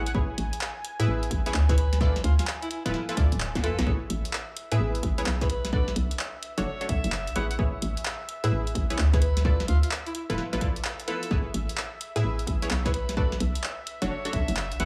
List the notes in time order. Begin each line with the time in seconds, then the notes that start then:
Already playing: A1 G#5
0.06 F#5, closed hi-hat
0.15 A1 E4 G#4 B4 C#5, kick
0.38 A1, closed hi-hat
0.53 closed hi-hat
0.61 clap
0.85 closed hi-hat
0.99 A2 E4 G#4 B4 E5, closed hi-hat
1.08 A1
1.23 closed hi-hat
1.31 A1, kick, closed hi-hat
1.46 E4 G#4 B4 C#5, snare, closed hi-hat
1.54 D2, clap
1.69 E4 G#4 B4 C#5, kick, snare, closed hi-hat
1.77 B4, closed hi-hat
1.93 snare, closed hi-hat
2.01 E4 F4 A4 B4 D5, kick
2.16 snare, closed hi-hat
2.24 D2 F4, closed hi-hat
2.39 F4, snare, closed hi-hat
2.47 clap
2.62 E4, closed hi-hat
2.71 E4, closed hi-hat
2.85 D1 E4 F4 A4 B4, closed hi-hat
2.94 snare
3.09 E4 F4 A4 B4, closed hi-hat
3.17 D2 E4 F4 A4 D5, kick, closed hi-hat
3.32 D1, closed hi-hat
3.40 clap
3.55 A1, kick, snare, closed hi-hat
3.63 F2 E4 F4 A4 B4, closed hi-hat
3.79 B1, snare, closed hi-hat
3.87 A1 E4 G#4 B4 C#5 E5, kick
4.10 A1, closed hi-hat
4.25 closed hi-hat
4.33 clap
4.57 closed hi-hat
4.72 A2 E4 G#4 B4 E5, closed hi-hat
4.80 A1
4.95 closed hi-hat
5.03 A1, kick, closed hi-hat
5.18 E4 G#4 B4 C#5, snare, closed hi-hat
5.26 B1, clap
5.41 E4 G#4 B4 C#5, kick, snare, closed hi-hat
5.50 B4, closed hi-hat
5.65 snare, closed hi-hat
5.73 D4 F#4 A4 B4 D5, kick
5.88 snare
5.96 B1, closed hi-hat
6.11 closed hi-hat
6.19 clap
6.43 closed hi-hat
6.58 F#1 D4 F#4 A4 C#5, closed hi-hat
6.66 C#5
6.81 D4 F#4 A4 C#5, closed hi-hat
6.89 B1 E5, kick, closed hi-hat
7.04 F#1, closed hi-hat
7.12 clap
7.27 B1, closed hi-hat
7.36 A1 E4 G#4 B4 C#5 F#5, closed hi-hat
7.51 F#5, closed hi-hat
7.59 A1 E4 G#4 B4 C#5, kick
7.82 A1, closed hi-hat
7.97 closed hi-hat
8.05 clap
8.29 closed hi-hat
8.44 A2 E4 G#4 B4 E5, closed hi-hat
8.52 A1
8.67 closed hi-hat
8.75 A1, kick, closed hi-hat
8.90 E4 G#4 B4 C#5, snare, closed hi-hat
8.98 D2, clap
9.13 E4 G#4 B4 C#5, kick, snare, closed hi-hat
9.22 B4, closed hi-hat
9.37 snare, closed hi-hat
9.45 E4 F4 A4 B4 D5, kick
9.60 snare, closed hi-hat
9.68 D2 F4, closed hi-hat
9.83 F4, closed hi-hat
9.91 clap
10.06 E4, closed hi-hat
10.15 E4, closed hi-hat
10.30 D1 E4 F4 A4 B4, closed hi-hat
10.38 snare
10.53 A1 E4 F4 A4 B4, closed hi-hat
10.61 E4 F4 A4 D5, kick, closed hi-hat
10.76 closed hi-hat
10.85 clap
11.00 closed hi-hat
11.08 E4 F4 A4 B4, closed hi-hat
11.23 closed hi-hat
11.31 A1 E4 G#4 B4 C#5 E5, kick
11.54 A1, closed hi-hat
11.69 closed hi-hat
11.77 clap
12.01 closed hi-hat
12.16 A2 E4 G#4 B4 E5, closed hi-hat
12.24 A1
12.39 closed hi-hat
12.47 A1, kick, closed hi-hat
12.62 E4 G#4 B4 C#5, snare, closed hi-hat
12.71 B1, clap
12.85 E4 G#4 B4 C#5, kick, snare, closed hi-hat
12.94 B4, closed hi-hat
13.09 snare, closed hi-hat
13.17 D4 F#4 A4 B4 D5, kick
13.32 snare
13.40 B1, closed hi-hat
13.55 closed hi-hat
13.64 clap
13.87 closed hi-hat
14.02 F#1 D4 F#4 A4 C#5, closed hi-hat
14.10 C#5
14.25 D4 F#4 A4 C#5, closed hi-hat
14.33 B1 E5, kick, closed hi-hat
14.48 F#1, closed hi-hat
14.57 clap
14.72 B1, closed hi-hat
14.80 A1 E4 G#4 B4 C#5 F#5, closed hi-hat